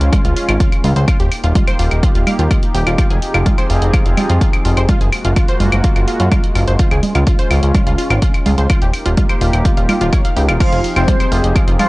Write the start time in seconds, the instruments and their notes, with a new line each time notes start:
Already playing: analog synth pad G#3 C#4 F4
0.01 analog synth bass C#2, closed hi-hat
0.13 synth pluck F4 F5, kick, closed hi-hat, low conga, claves
0.25 analog synth bass C#2, synth pluck F4 F5, closed hi-hat
0.36 synth pluck F4 F5, open hi-hat
0.49 analog synth bass G#1, synth pluck F4 F5, closed hi-hat, claves
0.60 synth pluck F4 F5, kick, closed hi-hat
0.72 closed hi-hat, claves
0.84 analog synth bass C#2, synth pluck F4 F5, open hi-hat, low conga
0.96 analog synth bass C#2, synth pluck C5 C6, closed hi-hat
1.08 analog synth pad A#3 D#4 G4, synth pluck F4 F5, kick, closed hi-hat, claves
1.20 analog synth bass D#1, synth pluck G4 G5, closed hi-hat
1.32 open hi-hat, claves
1.44 analog synth bass D#1, synth pluck F4 F5, closed hi-hat
1.55 synth pluck F4 F5, kick, closed hi-hat, low conga
1.68 synth pluck C5 C6, closed hi-hat, claves
1.79 analog synth bass D#1, synth pluck F4 F5, open hi-hat
1.91 analog synth bass D#1, closed hi-hat, claves
2.03 synth pluck F4 F5, kick, closed hi-hat
2.15 analog synth bass D#1, synth pluck F4 F5, closed hi-hat
2.27 synth pluck F5 F6, open hi-hat, low conga, claves
2.39 analog synth bass D#2, synth pluck F4 F5, closed hi-hat
2.51 synth pluck F4 F5, kick, closed hi-hat, claves
2.63 closed hi-hat
2.74 analog synth bass D#1, synth pluck G4 G5, open hi-hat
2.87 analog synth bass D#1, synth pluck F4 F5, closed hi-hat, claves
2.98 analog synth pad F3 C4 G#4, synth pluck F4 F5, kick, closed hi-hat, claves
3.10 analog synth bass F1, synth pluck G#4 G#5, closed hi-hat
3.22 open hi-hat
3.34 analog synth bass F1, synth pluck F4 F5, closed hi-hat, claves
3.46 synth pluck F4 F5, kick, closed hi-hat, low conga
3.58 synth pluck C5 C6, closed hi-hat, claves
3.70 analog synth bass F1, synth pluck F4 F5, open hi-hat
3.82 analog synth bass F1, closed hi-hat
3.94 synth pluck F4 F5, kick, closed hi-hat, claves
4.06 analog synth bass F1, synth pluck F4 F5, closed hi-hat
4.17 synth pluck F4 F5, open hi-hat, low conga, claves
4.30 analog synth bass F2, synth pluck F4 F5, closed hi-hat
4.41 synth pluck F4 F5, kick, closed hi-hat
4.53 closed hi-hat, claves
4.65 analog synth bass F1, synth pluck F4 F5, open hi-hat
4.77 analog synth bass F1, synth pluck C5 C6, closed hi-hat, claves
4.89 analog synth pad G#3 A#3 F#4, synth pluck F4 F5, kick, closed hi-hat, low conga
5.01 analog synth bass F#1, synth pluck G#4 G#5, closed hi-hat
5.12 open hi-hat, claves
5.25 analog synth bass F#1, synth pluck F4 F5, closed hi-hat
5.36 synth pluck F4 F5, kick, closed hi-hat, claves
5.48 synth pluck C5 C6, closed hi-hat
5.60 analog synth bass F#1, synth pluck F4 F5, open hi-hat, low conga
5.72 analog synth bass F#1, closed hi-hat, claves
5.84 synth pluck F4 F5, kick, closed hi-hat
5.96 analog synth bass F#1, synth pluck F4 F5, closed hi-hat, claves
6.08 synth pluck F4 F5, open hi-hat
6.20 analog synth bass F#2, synth pluck F4 F5, closed hi-hat
6.32 synth pluck F4 F5, kick, closed hi-hat, low conga, claves
6.44 closed hi-hat
6.55 analog synth bass F#1, synth pluck F4 F5, open hi-hat, claves
6.68 analog synth bass F#1, synth pluck C5 C6, closed hi-hat
6.79 analog synth pad C#4 F4, synth pluck F4 F5, kick, closed hi-hat
6.91 analog synth bass C#2, synth pluck G#4 G#5, closed hi-hat, claves
7.03 open hi-hat, low conga
7.15 analog synth bass C#2, synth pluck F4 F5, closed hi-hat, claves
7.27 synth pluck F4 F5, kick, closed hi-hat
7.39 synth pluck C5 C6, closed hi-hat
7.51 analog synth bass C#2, synth pluck F4 F5, open hi-hat, claves
7.63 analog synth bass C#2, closed hi-hat
7.74 synth pluck F4 F5, kick, closed hi-hat, low conga, claves
7.87 analog synth bass C#2, synth pluck F4 F5, closed hi-hat
7.98 synth pluck F4 F5, open hi-hat
8.10 analog synth bass G#1, synth pluck F4 F5, closed hi-hat, claves
8.22 synth pluck F4 F5, kick, closed hi-hat
8.34 closed hi-hat, claves
8.46 analog synth bass C#2, synth pluck F4 F5, open hi-hat, low conga
8.58 analog synth bass C#2, synth pluck C5 C6, closed hi-hat
8.70 analog synth pad A#3 D#4 G4, synth pluck F4 F5, kick, closed hi-hat, claves
8.82 analog synth bass D#1, synth pluck G4 G5, closed hi-hat
8.94 open hi-hat, claves
9.06 analog synth bass D#1, synth pluck F4 F5, closed hi-hat
9.17 synth pluck F4 F5, kick, closed hi-hat, low conga
9.29 synth pluck C5 C6, closed hi-hat, claves
9.41 analog synth bass D#1, synth pluck F4 F5, open hi-hat
9.53 analog synth bass D#1, closed hi-hat, claves
9.65 synth pluck F4 F5, kick, closed hi-hat
9.77 analog synth bass D#1, synth pluck F4 F5, closed hi-hat
9.89 synth pluck F4 F5, open hi-hat, low conga, claves
10.01 analog synth bass D#1, synth pluck F4 F5, closed hi-hat
10.13 synth pluck C#5 C#6, kick, closed hi-hat, claves
10.25 synth pluck F5 F6, closed hi-hat
10.36 analog synth bass C#2, synth pluck G4 G5, open hi-hat
10.48 analog synth bass D#1, synth pluck F4 F5, closed hi-hat, claves
10.60 analog synth pad F3 C4 G4 G#4, analog polysynth F3 F4, synth pluck F4 F5, digital synth lead F5, kick, closed hi-hat, crash, claves
10.72 analog synth bass F1, synth pluck G#4 G#5, closed hi-hat
10.84 open hi-hat
10.96 analog synth bass F1, analog polysynth C3 C4, synth pluck F4 F5, digital synth lead C5, closed hi-hat, claves
11.08 synth pluck F4 F5, kick, closed hi-hat, low conga
11.20 synth pluck C5 C6, closed hi-hat, claves
11.32 analog synth bass F1, synth pluck F4 F5, open hi-hat
11.44 analog synth bass F1, closed hi-hat
11.55 synth pluck F4 F5, kick, closed hi-hat, claves
11.68 analog synth bass F1, synth pluck F4 F5, closed hi-hat
11.79 analog polysynth F3 F4, synth pluck F4 F5, digital synth lead F5, open hi-hat, low conga, claves